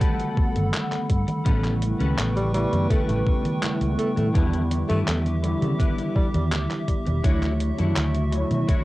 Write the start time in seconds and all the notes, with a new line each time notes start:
Already playing: D3 G3 A3 B3 A4 F#5 B5
0.00 F#4 G4 A4 B4, kick, closed hi-hat, high conga
0.20 closed hi-hat, high conga
0.37 kick
0.56 G1, closed hi-hat, high conga
0.74 clap, closed hi-hat, high conga
0.92 clap, closed hi-hat, high conga
1.09 G2, muted clean electric guitar stroke, kick, closed hi-hat
1.27 muted clean electric guitar stroke, closed hi-hat, high conga
1.44 A1 C#3 G3 A3 B3 C#4 E4 G4 A4 B4 G5 C#6, kick, closed hi-hat, high conga
1.64 clap, closed hi-hat, high conga
1.82 closed hi-hat
1.99 C#2 C#4 G4 A4 B4, closed hi-hat, high conga
2.18 A1, clap, closed hi-hat, high conga
2.36 G3, closed hi-hat, high conga
2.53 C#3 G3 A3 B3 E4, closed hi-hat
2.72 F#2, closed hi-hat, high conga
2.90 A3 C#4 G4 A4 B4, kick, closed hi-hat, high conga
3.08 A1 A3, closed hi-hat, high conga
3.27 kick
3.45 closed hi-hat, high conga
3.62 C#3 G3 A3 B3 E4, clap, closed hi-hat, high conga
3.81 C#2, closed hi-hat, high conga
3.98 A3, muted clean electric guitar stroke, closed hi-hat
4.16 A2 A3, muted clean electric guitar stroke, closed hi-hat, high conga
4.33 E2 D3 E3 G3 B3 D4 E4 G4 B4 E5 D6, kick, closed hi-hat, high conga
4.53 closed hi-hat, high conga
4.71 closed hi-hat
4.89 G2 A3 D4 E4 G4 B4, closed hi-hat, high conga
5.07 E2 A3, clap, closed hi-hat, high conga
5.26 closed hi-hat, high conga
5.42 D3 E3 G3 B3 E4, closed hi-hat
5.62 C#3, closed hi-hat, high conga
5.79 D4 E4 G4 B4, kick, closed hi-hat, high conga
5.98 closed hi-hat, high conga
6.15 G3, kick
6.34 E2 G3, closed hi-hat, high conga
6.52 D2, clap, closed hi-hat, high conga
6.71 clap, closed hi-hat, high conga
6.88 muted clean electric guitar stroke, kick, closed hi-hat
7.06 E1, muted clean electric guitar stroke, closed hi-hat, high conga
7.23 D2 D3 F#3 A3 D4 E4 F#4 C#5 C#6, kick, closed hi-hat, high conga
7.43 clap, closed hi-hat, high conga
7.60 closed hi-hat
7.78 F#2 D4 E4 F#4 C#5, closed hi-hat, high conga
7.96 D2, clap, closed hi-hat, high conga
8.15 closed hi-hat, high conga
8.31 D3 F#3 A3 E4 C#5, closed hi-hat
8.51 B2, closed hi-hat, high conga
8.68 D4 E4 F#4 C#5, muted fretless electric bass stroke, kick, closed hi-hat, high conga